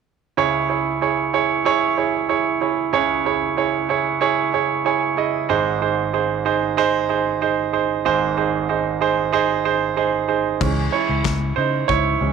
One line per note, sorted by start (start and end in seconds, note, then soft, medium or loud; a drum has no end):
0.37 2.90 C#2 soft
0.37 2.90 C#3 soft
0.37 0.65 E4 medium
0.37 0.66 G#4 medium
0.37 0.66 C#5 medium
0.69 0.97 E4 medium
0.69 0.97 G#4 medium
0.69 0.98 C#5 medium
1.01 1.29 E4 medium
1.01 1.30 G#4 medium
1.01 1.30 C#5 medium
1.33 1.61 E4 medium
1.33 1.61 G#4 medium
1.33 1.62 C#5 medium
1.65 1.93 E4 medium
1.65 1.94 G#4 medium
1.65 1.94 C#5 medium
1.97 2.25 E4 medium
1.97 2.26 G#4 medium
1.97 2.26 C#5 medium
2.29 2.57 E4 medium
2.29 2.57 G#4 medium
2.29 2.57 C#5 medium
2.61 2.89 E4 medium
2.61 2.89 G#4 soft
2.61 2.90 C#5 medium
2.93 5.45 C#2 medium
2.93 5.45 C#3 soft
2.93 3.21 E4 medium
2.93 3.21 G#4 medium
2.93 3.21 C#5 medium
3.25 3.53 E4 medium
3.25 3.54 G#4 medium
3.25 3.54 C#5 medium
3.57 3.85 E4 medium
3.57 3.85 G#4 medium
3.57 3.86 C#5 medium
3.89 4.17 E4 medium
3.89 4.17 G#4 medium
3.89 4.18 C#5 medium
4.21 4.49 E4 medium
4.21 4.49 G#4 medium
4.21 4.50 C#5 medium
4.53 4.81 E4 medium
4.53 4.81 G#4 medium
4.53 4.82 C#5 medium
4.85 5.13 E4 medium
4.85 5.13 G#4 medium
4.85 5.14 C#5 medium
4.85 5.46 G#5 medium
5.17 5.45 E4 medium
5.17 5.45 G#4 medium
5.17 5.46 D#5 medium
5.49 8.01 G#1 soft
5.49 8.01 G#2 medium
5.49 5.77 D#4 medium
5.49 5.77 G#4 medium
5.49 5.77 C5 medium
5.81 6.09 D#4 medium
5.81 6.09 G#4 medium
5.81 6.10 C5 medium
6.13 6.41 D#4 medium
6.13 6.41 G#4 medium
6.13 6.42 C5 medium
6.45 6.73 D#4 medium
6.45 6.73 G#4 medium
6.45 6.74 C5 medium
6.77 7.05 D#4 medium
6.77 7.05 G#4 medium
6.77 7.06 C5 loud
7.09 7.37 D#4 medium
7.09 7.37 G#4 medium
7.09 7.38 C5 medium
7.41 7.69 D#4 medium
7.41 7.69 G#4 medium
7.41 7.70 C5 medium
7.73 8.01 D#4 medium
7.73 8.01 G#4 medium
7.73 8.01 C5 medium
8.05 10.57 G#1 medium
8.05 10.57 G#2 medium
8.05 8.33 D#4 medium
8.05 8.33 G#4 medium
8.05 8.33 C5 medium
8.37 8.65 D#4 medium
8.37 8.65 G#4 medium
8.37 8.65 C5 medium
8.69 8.97 D#4 medium
8.69 8.97 G#4 medium
8.69 8.97 C5 medium
9.01 9.29 D#4 medium
9.01 9.29 G#4 medium
9.01 9.29 C5 medium
9.32 9.61 D#4 medium
9.32 9.61 G#4 medium
9.32 9.61 C5 medium
9.65 9.93 D#4 medium
9.65 9.93 G#4 medium
9.65 9.93 C5 medium
9.96 10.25 D#4 medium
9.96 10.25 G#4 medium
9.96 10.25 C5 medium
10.28 10.56 D#4 medium
10.28 10.57 G#4 medium
10.28 10.57 C5 medium
10.60 10.87 C#2 medium
10.60 12.19 E3 soft
10.60 12.20 G#3 soft
10.60 12.20 C#4 medium
10.60 kick medium
10.60 crash medium
10.92 11.54 E4 medium
10.92 11.59 C#5 medium
11.09 11.22 C#2 medium
11.25 11.51 C#2 medium
11.25 kick medium
11.25 snare medium
11.25 clap medium
11.56 11.83 C#3 medium
11.56 11.87 D#4 medium
11.56 11.89 C5 medium
11.88 12.15 C#2 medium
11.88 12.33 E4 medium
11.88 12.33 C#5 medium
11.88 kick medium
12.21 12.33 C#2 medium
12.21 12.33 E3 soft
12.21 12.33 G#3 soft
12.21 12.33 C#4 soft